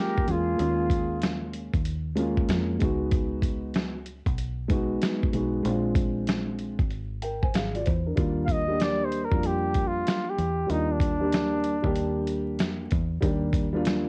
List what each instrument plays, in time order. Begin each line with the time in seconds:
Already playing: grand piano G#3 A#3 C#4 F4, flugelhorn G4, flute A#4
0.18 kick
0.25 fingered electric bass E2, grand piano G#3 A#3 C#4 F4, flute G#4, closed hi-hat
0.31 flugelhorn F4
0.57 fingered electric bass D#2, grand piano G#3 A#3 C#4 F4, closed hi-hat
0.90 kick, closed hi-hat
1.22 snare, closed hi-hat
1.53 closed hi-hat
1.74 fingered electric bass D#2, kick, closed hi-hat
1.85 closed hi-hat
2.15 grand piano G#3 A#3 C#4 F4, closed hi-hat
2.37 kick
2.49 fingered electric bass F2, snare, closed hi-hat
2.79 fingered electric bass C#2, grand piano G#3 B3 D#4 F#4, kick, closed hi-hat
3.11 kick, closed hi-hat
3.42 kick, closed hi-hat
3.74 snare, closed hi-hat
4.06 closed hi-hat
4.26 fingered electric bass B1, kick, closed hi-hat
4.38 closed hi-hat
4.68 grand piano G#3 B3 D#4 F#4, kick, closed hi-hat
5.02 snare, closed hi-hat
5.23 kick
5.33 fingered electric bass B1, grand piano G#3 B3 D#4 F#4, closed hi-hat
5.63 fingered electric bass A#1, grand piano G#3 C4 D4 F4, closed hi-hat
5.95 kick, closed hi-hat
6.27 snare, closed hi-hat
6.59 closed hi-hat
6.79 fingered electric bass G#1, kick, closed hi-hat
6.90 closed hi-hat
7.22 grand piano A#4 G5, closed hi-hat
7.42 grand piano C5 G#5, kick
7.54 fingered electric bass G#1, grand piano G#4 F5, snare, closed hi-hat
7.75 grand piano F4 D5, closed hi-hat
7.85 fingered electric bass E2, grand piano C5, kick, closed hi-hat
8.06 grand piano D4 A#4
8.16 fingered electric bass D#2, grand piano G3 A#3 D4 F4, kick, closed hi-hat
8.45 flugelhorn F5, kick
8.49 flugelhorn D#5, closed hi-hat
8.67 grand piano G3 A#3 D4 G4
8.80 flugelhorn D5, snare, closed hi-hat
9.05 flugelhorn C5
9.12 closed hi-hat
9.25 flugelhorn A#4
9.31 fingered electric bass F2, grand piano G3 A#3 D4 F4, kick
9.43 flugelhorn G4, closed hi-hat
9.74 kick, closed hi-hat
9.87 flugelhorn F4
10.07 snare, closed hi-hat
10.29 flugelhorn G4
10.38 fingered electric bass E2, closed hi-hat
10.67 fingered electric bass D#2, grand piano G3 A#3 D4 F4, flugelhorn D#4, closed hi-hat
10.92 flugelhorn D4
11.00 kick, closed hi-hat
11.20 grand piano G3 A#3 D4 G4
11.33 snare, closed hi-hat
11.64 closed hi-hat
11.82 fingered electric bass D#2, grand piano G3 A#3 D4 G4, kick
11.96 closed hi-hat
12.27 closed hi-hat
12.59 fingered electric bass F2, snare, closed hi-hat
12.91 fingered electric bass E2, kick, closed hi-hat
13.20 fingered electric bass D#2, grand piano G3 A#3 D4 G4, kick, closed hi-hat
13.53 kick, closed hi-hat
13.73 grand piano G3 A#3 D4 F4
13.85 snare, closed hi-hat